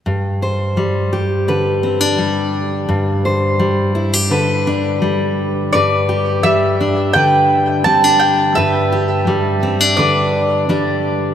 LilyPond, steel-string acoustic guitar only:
\new Staff \with { instrumentName = "Steel-string acoustic guitar" } { \time 4/4 \key g \major \tempo 4 = 85 << { r8 c''4 g'8 b'8 c'16 d'4~ d'16 | r8 c''4 e'16 g'16 b'8 d'4. | b'8 g'4 d'8 b'4 c'16 d'8. | b'8 g'4 c'16 d'16 b'4 d'4 | } \\ { g,4 g4 d4 g4 | g,4 g4 d4 g4 | g,4 g4 d4 g4 | g,4 g4 d4 g4 | } >> }